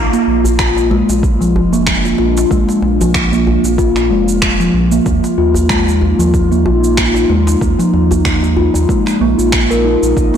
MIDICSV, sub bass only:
0, 0, Header, 1, 2, 480
1, 0, Start_track
1, 0, Tempo, 638298
1, 1885, Time_signature, 4, 2, 24, 8
1, 7800, End_track
2, 0, Start_track
2, 0, Title_t, "Sub bass"
2, 0, Program_c, 0, 38
2, 207, Note_on_c, 0, 34, 77
2, 778, Note_off_c, 0, 34, 0
2, 821, Note_on_c, 0, 34, 79
2, 1165, Note_on_c, 0, 29, 88
2, 1176, Note_off_c, 0, 34, 0
2, 1612, Note_off_c, 0, 29, 0
2, 1646, Note_on_c, 0, 34, 97
2, 1845, Note_off_c, 0, 34, 0
2, 1885, Note_on_c, 0, 34, 94
2, 1993, Note_off_c, 0, 34, 0
2, 2121, Note_on_c, 0, 34, 77
2, 2695, Note_off_c, 0, 34, 0
2, 2736, Note_on_c, 0, 34, 83
2, 3082, Note_on_c, 0, 29, 90
2, 3093, Note_off_c, 0, 34, 0
2, 3530, Note_off_c, 0, 29, 0
2, 3564, Note_on_c, 0, 34, 100
2, 3763, Note_off_c, 0, 34, 0
2, 3806, Note_on_c, 0, 39, 90
2, 3914, Note_off_c, 0, 39, 0
2, 4044, Note_on_c, 0, 39, 79
2, 4617, Note_off_c, 0, 39, 0
2, 4655, Note_on_c, 0, 39, 87
2, 5006, Note_on_c, 0, 34, 92
2, 5017, Note_off_c, 0, 39, 0
2, 5453, Note_off_c, 0, 34, 0
2, 5487, Note_on_c, 0, 39, 100
2, 5685, Note_off_c, 0, 39, 0
2, 5726, Note_on_c, 0, 39, 95
2, 5833, Note_off_c, 0, 39, 0
2, 5968, Note_on_c, 0, 39, 75
2, 6539, Note_off_c, 0, 39, 0
2, 6578, Note_on_c, 0, 39, 82
2, 6664, Note_off_c, 0, 39, 0
2, 6923, Note_on_c, 0, 34, 100
2, 7032, Note_off_c, 0, 34, 0
2, 7059, Note_on_c, 0, 34, 76
2, 7498, Note_off_c, 0, 34, 0
2, 7540, Note_on_c, 0, 34, 91
2, 7625, Note_off_c, 0, 34, 0
2, 7646, Note_on_c, 0, 34, 90
2, 7753, Note_off_c, 0, 34, 0
2, 7800, End_track
0, 0, End_of_file